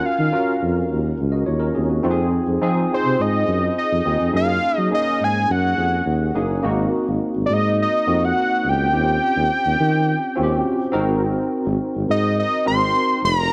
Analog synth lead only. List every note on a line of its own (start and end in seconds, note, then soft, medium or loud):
0.05 0.91 F5 medium
2.94 3.23 C5 medium
3.21 3.78 D#5 medium
3.78 4.31 D#5 medium
4.36 4.77 F5 loud
4.77 4.89 D#5 loud
4.94 5.25 D#5 loud
5.24 5.53 G#5 loud
5.51 6.37 F#5 loud
7.46 7.55 D5 medium
7.53 7.80 D#5 medium
7.82 8.26 D#5 loud
8.25 8.71 F#5 loud
8.69 10.96 G5 loud
12.11 12.37 D#5 medium
12.39 12.65 D#5 medium
12.67 13.20 C6 loud
13.25 13.53 A#5 loud